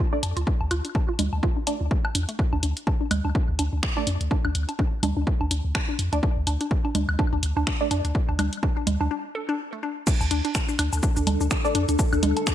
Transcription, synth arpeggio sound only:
0.13 D4
0.37 F4
0.47 D4
0.71 F4
0.85 D4
1.09 F4
1.19 D4
1.43 F4
1.57 D4
1.81 D4
1.91 A3
2.15 D4
2.29 A3
2.53 D4
2.63 D4
2.87 D4
3.01 D4
3.25 D4
3.35 D4
3.59 D4
3.73 D4
3.97 D4
4.07 D4
4.31 D4
4.45 D4
4.69 D4
4.79 D4
5.03 D4
5.17 D4
5.41 D4
5.51 D4
5.75 D4
5.89 D4
6.13 D4
6.23 D4
6.47 D4
6.61 D4
6.85 D4
6.95 D4
7.19 D4
7.33 D4
7.57 D4
7.67 D4
7.91 D4
8.05 D4
8.29 D4
8.39 D4
8.63 D4
8.77 D4
9.01 D4
9.11 D4
9.35 A4
9.49 D4
9.73 A3
9.83 D4
10.07 D4
10.31 D4
10.45 D4
10.69 D4
10.79 D4
11.03 D4
11.17 D4
11.41 D4
11.51 D4
11.75 D4
11.89 D4
12.13 D4
12.23 D4
12.47 D4

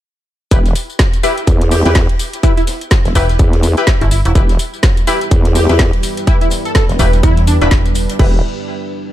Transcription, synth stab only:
0.51 E4 G4 B4
1.23 E4 G4 B4
1.85 E4 G4 B4
2.43 E4 G4 B4
3.15 E4 G4 B4
3.77 E4 G4 B4
4.35 E4 G4 B4
5.07 E4 G4 B4
5.69 E4 G4 B4
6.27 E4 G4 B4
6.99 E4 G4 B4
7.61 E4 G4 B4
8.20 E4 G4 B4

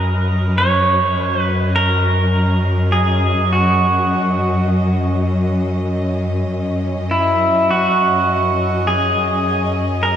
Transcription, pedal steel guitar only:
Already playing: A#4
0.58 C#5
1.42 B4
1.76 A#4
2.92 G#4
3.53 F#4
7.11 E4
7.71 F#4
8.87 G#4
10.03 A#4

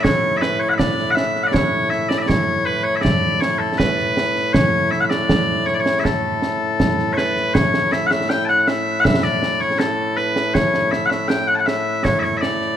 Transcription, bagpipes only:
Already playing: A2 A3 E4
0.03 C#5
0.37 E5
0.41 B4
0.59 C#5
0.69 F#5
0.73 E5
0.78 D5
1.11 F#5
1.15 E5
1.43 D5 F#5
1.53 C#5
1.90 E5
2.09 D5
2.18 D5 E5
2.28 C#5
2.65 B4
2.83 C#5
2.96 E5
3.01 D5
3.40 C#5
3.59 A4
3.78 B4
4.53 C#5
4.91 E5
5.00 F#5
5.04 E5
5.10 D5
5.66 C#5
5.74 D5
5.80 C#5
5.99 E5
6.04 A4
7.13 C#5
7.17 B4
7.54 C#5
7.92 E5
8.06 F#5
8.11 E5
8.29 G5
8.45 F#5 A5
8.60 F#5
8.67 E5
9.00 F#5
9.04 E5
9.23 D5
9.60 C#5
9.79 A4
10.17 B4
10.54 C#5
10.91 E5
11.06 E5 F#5
11.28 G5
11.47 F#5
11.55 A5
11.59 F#5
11.66 E5
12.04 C#5
12.19 C#5 E5
12.37 E5
12.41 D5

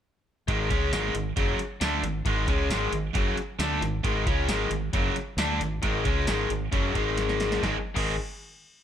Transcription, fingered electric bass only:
0.48 G#1
0.70 C#2
0.92 G#1
1.14 G#1
1.37 F#1
1.81 D2
2.03 G#1
2.25 G#1
2.48 C#2
2.69 G#1
2.92 G#1
3.15 F#1
3.36 muted fingered electric bass stroke
3.59 D2
3.81 G#1
4.04 G#1
4.26 C#2
4.48 G#1
4.70 G#1
4.93 F#1
5.15 muted fingered electric bass stroke
5.37 D2
5.60 G#1
5.83 G#1
6.05 C#2
6.28 G#1
6.50 G#1
6.72 F#1
6.95 G#1
7.63 G#1
7.96 G#1

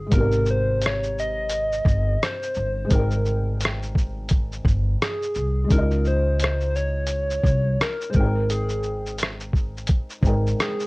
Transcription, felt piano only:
0.07 G#3 B3
0.14 C3 D#4 G4
0.20 A#4
2.85 G#3 C4
2.92 D#4 G5
2.99 A#4
5.64 G#3 C#4
5.71 D#4 E4
5.78 F4 D#5
8.10 G#3 C4
8.16 D#4 G5
8.23 A#4
10.22 G#3 C4 D#4
10.27 A#4 G5

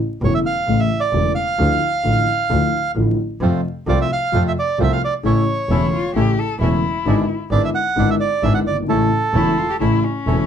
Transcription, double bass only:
0.22 E1
0.67 A1
1.13 E1
1.59 D2
2.04 A1
2.50 D2
2.95 A1
3.41 F2
3.87 C2
4.33 F2
4.79 C2
5.24 A1
5.69 E1
6.15 A1
6.60 E1
7.06 G#1
7.51 G#1
7.97 G#1
8.43 G#1
8.66 G1
8.89 A1
9.34 E1
9.81 A1
10.27 E1

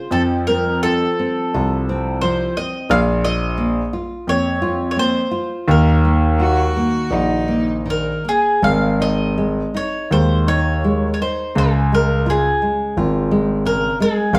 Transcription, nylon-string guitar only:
0.11 F3
0.48 C4
0.84 F4
1.19 C4
1.54 F4
1.89 C4
2.23 F3
2.57 C4
2.89 A#3
3.24 F4
3.58 A#3
3.93 F4
4.28 A#3
4.62 F4
4.96 A#3
5.31 F4
5.68 D#3
6.05 A#3
6.40 F#4
6.77 A#3
7.12 F#4
7.48 A#3
7.86 D#3
8.25 A#3
8.63 G#3
9.00 D#4
9.38 G#3
9.74 D#4
10.11 G#3
10.47 D#4
10.84 G#3
11.21 D#4
11.55 C#3
11.92 G#3
12.26 F4
12.62 G#3
12.97 F4
13.31 G#3
13.65 C#3
14.00 G#3
14.33 G#3

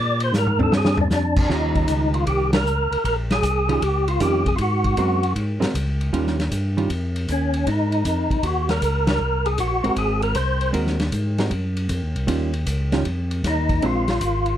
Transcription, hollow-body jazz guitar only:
0.59 C4 D4
1.50 D#3 G3 C#4 F4
3.69 D#3 G3 C#4 F4
4.21 D#3 G3 C#4 F4
4.98 G#3 C4 F#4 A#4
5.60 G#3 C4 F#4 A#4
6.13 D#3 G3 C#4 F4
6.77 D#3 G3 C#4 F4
9.84 G#3 C4 F#4 A#4
10.73 G#3 C4 F#4 A#4
11.38 G#3 C4 F#4 A#4
12.27 D#3 G3 C#4 F4
12.93 D#3 G3 C#4 F4
13.83 G#3 C4 D4

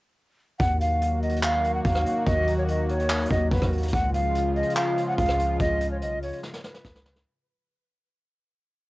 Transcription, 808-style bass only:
0.60 D#2
1.85 D#2
2.27 D#2
3.31 D#2
3.52 D#2
3.62 D#2
3.93 C#2
5.18 C#2
5.60 C#2
6.01 B1
6.17 C#2
6.85 C#2

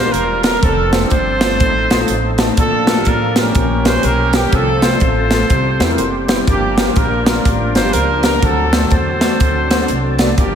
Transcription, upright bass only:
Already playing: A#1
0.14 E1
0.63 F1
1.11 G1
1.60 A1
1.91 A#1
2.09 A1
2.57 A#1
3.06 A1
3.55 A#1
4.04 B1
4.53 C2
5.02 A1
5.50 C2
5.80 E2
5.98 F#1
6.47 G1
6.97 A#1
7.45 A1
7.75 G1
7.94 C#2
8.42 D2
8.92 E2
9.40 D2
9.90 C2
10.38 G1

